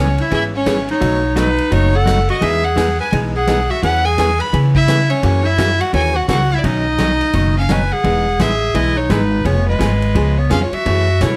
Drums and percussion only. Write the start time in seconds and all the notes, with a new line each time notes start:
0.18 ride
0.31 kick, ride
0.66 kick, snare, hi-hat pedal, ride
0.89 ride
1.02 kick, ride
1.36 kick, snare, hi-hat pedal, ride
1.58 ride
1.72 kick, ride
2.07 kick, snare, hi-hat pedal, ride
2.29 ride
2.42 kick, ride
2.77 kick, snare, hi-hat pedal, ride
3.13 kick, ride
3.47 kick, snare, hi-hat pedal, ride
3.83 kick, ride
4.18 kick, snare, hi-hat pedal, ride
4.40 ride
4.53 kick, ride
4.75 kick
4.88 kick, snare, hi-hat pedal, ride
5.10 ride
5.23 kick, ride
5.58 kick, snare, hi-hat pedal, ride
5.81 ride
5.93 kick, ride
6.28 kick, snare, hi-hat pedal, ride
6.64 kick, ride
6.98 kick, snare, hi-hat pedal, ride
7.21 ride
7.33 kick, ride
7.69 kick, snare, hi-hat pedal, ride
8.04 kick, ride
8.39 kick, snare, hi-hat pedal, ride
8.74 kick, ride
9.10 kick, snare, hi-hat pedal, ride
9.45 kick, ride
9.80 kick, snare, hi-hat pedal, ride
10.02 ride
10.15 kick, ride
10.51 kick, snare, hi-hat pedal, ride
10.73 ride
10.86 kick, ride
11.21 kick, snare, hi-hat pedal, ride